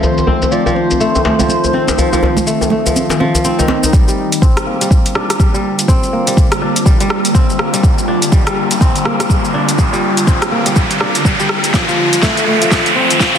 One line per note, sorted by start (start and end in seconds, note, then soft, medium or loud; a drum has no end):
0.00 3.89 D#3 medium
0.00 0.50 F3 medium
0.00 1.00 A3 medium
0.00 3.89 A3 medium
0.00 0.27 C4 medium
0.00 3.89 C4 medium
0.00 3.89 D#4 medium
0.00 0.52 C5 loud
0.00 djembe bass medium
0.00 shaker medium
0.18 djembe tone medium
0.18 shaker soft
0.27 1.73 C4 medium
0.27 high conga medium
0.27 djembe bass medium
0.42 muted conga soft
0.42 djembe tone medium
0.42 shaker medium
0.51 0.65 F3 medium
0.51 0.74 D5 loud
0.51 shaker medium
0.66 1.38 F3 medium
0.66 djembe tone medium
0.66 shaker soft
0.75 3.40 C5 loud
0.75 muted conga soft
0.91 djembe tone medium
0.91 shaker medium
1.00 1.24 A3 medium
1.00 shaker medium
1.15 muted conga soft
1.15 djembe tone medium
1.15 shaker soft
1.25 2.46 A3 medium
1.25 djembe slap loud
1.39 1.97 F3 medium
1.39 high conga medium
1.39 djembe tone medium
1.39 low conga loud
1.39 shaker medium
1.49 muted conga soft
1.49 high conga medium
1.49 shaker medium
1.64 djembe tone medium
1.64 shaker soft
1.73 3.44 C4 medium
1.73 high conga medium
1.87 muted conga soft
1.87 djembe slap medium
1.87 djembe tone medium
1.87 shaker medium
1.98 2.11 F3 medium
1.98 djembe bass medium
1.98 shaker medium
2.13 2.85 F3 medium
2.13 djembe tone medium
2.13 shaker soft
2.22 djembe slap medium
2.22 high conga medium
2.22 djembe bass medium
2.37 muted conga medium
2.37 djembe tone medium
2.37 low conga medium
2.37 shaker medium
2.47 2.71 A3 medium
2.47 shaker medium
2.61 djembe tone medium
2.61 shaker soft
2.70 4.72 A3 medium
2.70 low conga medium
2.86 3.19 F3 medium
2.86 djembe tone medium
2.86 shaker medium
2.96 high conga medium
2.96 shaker medium
3.09 muted conga medium
3.09 djembe slap medium
3.09 djembe tone medium
3.09 shaker soft
3.20 3.62 F3 medium
3.20 high conga medium
3.35 djembe tone medium
3.35 shaker medium
3.44 4.42 C4 medium
3.44 muted conga soft
3.44 shaker medium
3.59 3.98 D#3 loud
3.59 djembe tone medium
3.59 shaker soft
3.68 djembe slap medium
3.68 high conga medium
3.83 5.21 D#4 medium
3.83 muted conga soft
3.83 djembe tone medium
3.83 shaker medium
3.93 11.70 D3 medium
3.93 11.70 G3 medium
3.93 4.07 G3 medium
3.93 11.70 A#3 medium
3.93 13.38 F4 medium
3.93 kick loud
3.93 riser medium
3.93 shaker medium
4.08 4.80 G3 medium
4.08 shaker soft
4.32 closed hi-hat medium
4.32 shaker medium
4.42 5.88 C4 medium
4.42 kick loud
4.42 shaker medium
4.57 cross-stick medium
4.57 closed hi-hat soft
4.57 shaker soft
4.66 6.12 A#3 medium
4.81 5.38 G3 medium
4.81 closed hi-hat medium
4.81 shaker medium
4.91 kick loud
4.91 shaker medium
5.06 closed hi-hat soft
5.06 shaker soft
5.15 6.61 D4 medium
5.15 cross-stick medium
5.30 cross-stick medium
5.30 closed hi-hat medium
5.30 shaker medium
5.39 5.53 G3 medium
5.39 kick loud
5.39 shaker medium
5.54 6.26 G3 loud
5.54 shaker soft
5.79 closed hi-hat medium
5.79 shaker medium
5.88 7.34 C4 loud
5.88 kick loud
5.88 shaker medium
6.03 shaker soft
6.13 7.59 A#3 medium
6.27 6.84 G3 medium
6.27 closed hi-hat medium
6.27 shaker medium
6.37 kick loud
6.37 shaker medium
6.52 cross-stick medium
6.52 closed hi-hat soft
6.52 shaker soft
6.61 8.07 D4 loud
6.76 closed hi-hat medium
6.76 shaker medium
6.85 6.99 G3 medium
6.85 kick loud
6.85 shaker medium
7.00 7.72 G3 loud
7.00 closed hi-hat soft
7.00 shaker soft
7.10 cross-stick medium
7.25 closed hi-hat medium
7.25 shaker medium
7.35 8.81 C4 medium
7.35 kick loud
7.35 shaker medium
7.50 shaker soft
7.59 9.05 A#3 medium
7.59 cross-stick medium
7.73 8.31 G3 medium
7.73 closed hi-hat medium
7.73 shaker medium
7.83 kick loud
7.83 shaker medium
7.98 shaker soft
8.08 9.54 D4 loud
8.22 closed hi-hat soft
8.22 shaker medium
8.32 8.45 G3 medium
8.32 kick loud
8.32 shaker medium
8.47 9.19 G3 loud
8.47 cross-stick medium
8.47 closed hi-hat soft
8.47 shaker soft
8.71 closed hi-hat medium
8.71 shaker medium
8.81 10.27 C4 medium
8.81 kick loud
8.81 shaker medium
8.96 closed hi-hat soft
8.96 shaker soft
9.05 10.51 A#3 medium
9.05 cross-stick medium
9.20 9.77 G3 medium
9.20 cross-stick medium
9.20 closed hi-hat medium
9.20 shaker medium
9.30 kick loud
9.30 shaker medium
9.45 shaker soft
9.54 11.00 D4 loud
9.69 closed hi-hat medium
9.69 shaker medium
9.78 9.92 G3 medium
9.78 kick loud
9.78 shaker medium
9.93 10.65 G3 loud
9.93 shaker soft
10.17 closed hi-hat soft
10.17 shaker medium
10.27 12.07 C4 medium
10.27 kick loud
10.27 shaker medium
10.42 cross-stick medium
10.42 closed hi-hat soft
10.42 shaker soft
10.52 12.28 A#3 medium
10.66 11.24 G3 medium
10.66 closed hi-hat medium
10.66 shaker medium
10.76 kick loud
10.76 shaker medium
10.91 closed hi-hat soft
10.91 shaker soft
11.01 12.69 D4 loud
11.01 cross-stick medium
11.15 closed hi-hat medium
11.15 shaker medium
11.25 11.38 G3 medium
11.25 kick loud
11.25 shaker medium
11.39 11.79 G3 loud
11.39 shaker soft
11.49 cross-stick medium
11.64 closed hi-hat medium
11.64 shaker medium
11.74 13.38 D#3 medium
11.74 11.87 F3 medium
11.74 13.38 A3 medium
11.74 13.38 C4 medium
11.74 kick loud
11.74 snare soft
11.74 shaker medium
11.88 12.60 F3 loud
11.88 shaker soft
12.13 closed hi-hat medium
12.13 shaker medium
12.22 12.47 A3 loud
12.22 kick loud
12.22 snare soft
12.22 shaker medium
12.37 closed hi-hat soft
12.37 shaker soft
12.47 13.38 A3 medium
12.61 13.19 F3 medium
12.61 closed hi-hat medium
12.61 shaker medium
12.71 kick loud
12.71 snare medium
12.71 shaker medium
12.86 closed hi-hat soft
12.86 shaker soft
12.96 13.38 C4 loud
13.11 closed hi-hat medium
13.11 shaker medium
13.20 13.33 F3 medium
13.20 kick loud
13.20 snare medium
13.20 shaker medium
13.35 13.38 F3 loud